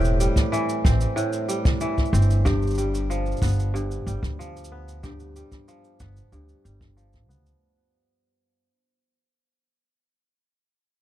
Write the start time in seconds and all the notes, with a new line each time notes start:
Already playing: E1 A2 E3 G3 C4 G4
0.01 cabasa
0.05 cabasa
0.20 G3, cabasa
0.36 kick, cabasa
0.52 E3, cabasa
0.69 cabasa
0.84 A1 C4, kick, cabasa
1.01 cabasa
1.16 A2, cabasa
1.33 cabasa
1.49 G3, cabasa
1.65 kick, cabasa
1.81 E3, cabasa
1.98 kick, cabasa
2.05 cabasa
2.13 G1 C4, cabasa
2.22 cabasa
2.30 cabasa
2.45 G2 G4, kick, cabasa
2.62 cabasa
2.67 cabasa
2.70 cabasa
2.75 G3, cabasa
2.78 cabasa
2.95 cabasa
3.10 F3, cabasa
3.26 cabasa
3.32 cabasa
3.37 cabasa
3.42 G1 B3, kick, cabasa
3.45 cabasa
3.47 cabasa
3.49 cabasa
3.51 cabasa
3.54 cabasa
3.56 cabasa
3.59 cabasa
3.74 G2, cabasa
3.91 cabasa
4.06 G1 G3, cabasa
4.23 D2, kick, cabasa
4.39 F3, cabasa
4.57 cabasa
4.64 cabasa
4.72 B3
4.88 cabasa
5.03 G2 G4, kick, cabasa
5.20 cabasa
5.36 G3, cabasa
5.52 kick, cabasa
5.68 F3, cabasa
5.84 cabasa
6.00 G1 B3, kick, cabasa
6.17 cabasa
6.32 D2 G2, cabasa
6.49 cabasa
6.64 G1 G3, cabasa
6.81 kick, cabasa
6.97 F3, cabasa
7.13 kick, cabasa
7.29 D2 B3, cabasa
7.46 cabasa